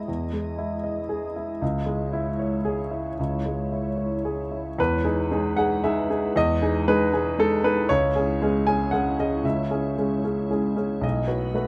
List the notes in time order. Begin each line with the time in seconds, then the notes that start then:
Already playing: E2 G#3 E4 G#4 D#5
0.08 E2
0.33 G#3
0.58 E4
0.84 D#5
1.09 G#4
1.36 E4
1.61 C#2 C#5
1.86 G#3
2.13 E4
2.39 C#5
2.65 G#4
2.91 E4
3.19 C#2
3.46 G#3
3.72 E4
3.98 C#5
4.25 G#4
4.51 E4
4.78 E2 G#3 E4 B4
5.04 D#4 G#4
5.31 G#3 D#4 G#4
5.57 D#4 G#4 F#5
5.84 G#3 D#4 G#4 E5
6.10 D#4 G#4
6.36 E2 D#5
6.62 D#4 G#4
6.88 G#3 D#4 G#4 B4
7.13 D#4 G#4
7.38 G#3 D#4 G#4 A4
7.64 D#4 G#4 B4
7.89 C#2 C#5
8.15 C#4 G#4
8.41 G#3 C#4 G#4
8.67 C#4 G#4 G#5
8.91 G#3 C#4 G#4 F#5
9.19 C#4 G#4 D#5
9.43 C#2 E5
9.71 C#4 G#4
9.98 G#3 C#4 G#4
10.24 C#4 G#4
10.50 G#3 C#4 G#4
10.76 C#4 G#4
11.01 B1 A3 F#4 B4 D#5
11.27 F#4 B4
11.54 A3 F#4 B4